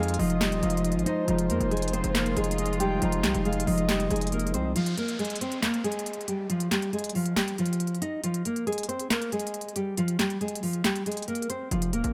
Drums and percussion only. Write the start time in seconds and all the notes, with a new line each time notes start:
0.03 closed hi-hat
0.08 closed hi-hat
0.14 closed hi-hat
0.20 open hi-hat
0.30 closed hi-hat
0.41 snare, clap, closed hi-hat
0.52 closed hi-hat
0.63 closed hi-hat
0.70 closed hi-hat
0.77 closed hi-hat
0.85 closed hi-hat
0.92 closed hi-hat
0.99 closed hi-hat
1.06 closed hi-hat
1.28 closed hi-hat
1.39 closed hi-hat
1.50 closed hi-hat
1.61 closed hi-hat
1.71 closed hi-hat
1.77 closed hi-hat
1.82 closed hi-hat
1.88 closed hi-hat
1.93 closed hi-hat
2.04 closed hi-hat
2.15 snare, clap, closed hi-hat
2.26 closed hi-hat
2.37 closed hi-hat
2.44 closed hi-hat
2.51 closed hi-hat
2.58 closed hi-hat
2.66 closed hi-hat
2.73 closed hi-hat
2.80 closed hi-hat
3.02 closed hi-hat
3.12 closed hi-hat
3.24 snare, clap, closed hi-hat
3.34 closed hi-hat
3.45 closed hi-hat
3.53 closed hi-hat
3.60 closed hi-hat
3.67 open hi-hat
3.78 closed hi-hat
3.89 snare, clap, closed hi-hat
4.00 closed hi-hat
4.11 closed hi-hat
4.16 closed hi-hat
4.21 closed hi-hat
4.27 closed hi-hat
4.32 closed hi-hat
4.39 closed hi-hat
4.47 closed hi-hat
4.54 closed hi-hat
4.76 closed hi-hat
4.86 closed hi-hat
4.97 closed hi-hat
5.08 closed hi-hat
5.19 closed hi-hat
5.25 closed hi-hat
5.30 closed hi-hat
5.36 closed hi-hat
5.41 closed hi-hat
5.52 closed hi-hat
5.63 snare, clap, closed hi-hat
5.74 closed hi-hat
5.84 closed hi-hat
5.92 closed hi-hat
5.99 closed hi-hat
6.06 closed hi-hat
6.13 closed hi-hat
6.21 closed hi-hat
6.28 closed hi-hat
6.50 closed hi-hat
6.60 closed hi-hat
6.71 snare, clap, closed hi-hat
6.82 closed hi-hat
6.93 closed hi-hat
6.99 closed hi-hat
7.04 closed hi-hat
7.09 closed hi-hat
7.15 open hi-hat
7.26 closed hi-hat
7.37 snare, clap, closed hi-hat
7.48 closed hi-hat
7.58 closed hi-hat
7.66 closed hi-hat
7.73 closed hi-hat
7.80 closed hi-hat
7.87 closed hi-hat
7.95 closed hi-hat
8.02 closed hi-hat
8.24 closed hi-hat
8.34 closed hi-hat
8.45 closed hi-hat
8.56 closed hi-hat
8.67 closed hi-hat
8.73 closed hi-hat
8.78 closed hi-hat
8.83 closed hi-hat
8.89 closed hi-hat
8.99 closed hi-hat
9.10 snare, clap, closed hi-hat
9.22 closed hi-hat
9.32 closed hi-hat
9.39 closed hi-hat
9.47 closed hi-hat
9.54 closed hi-hat
9.61 closed hi-hat
9.69 closed hi-hat
9.76 closed hi-hat
9.97 closed hi-hat
10.08 closed hi-hat
10.19 snare, clap, closed hi-hat
10.30 closed hi-hat
10.41 closed hi-hat
10.48 closed hi-hat
10.55 closed hi-hat
10.63 open hi-hat
10.73 closed hi-hat
10.84 snare, clap, closed hi-hat
10.96 closed hi-hat
11.06 closed hi-hat
11.12 closed hi-hat
11.17 closed hi-hat
11.22 closed hi-hat
11.28 closed hi-hat
11.35 closed hi-hat
11.42 closed hi-hat
11.50 closed hi-hat
11.71 closed hi-hat
11.82 closed hi-hat
11.93 closed hi-hat
12.04 closed hi-hat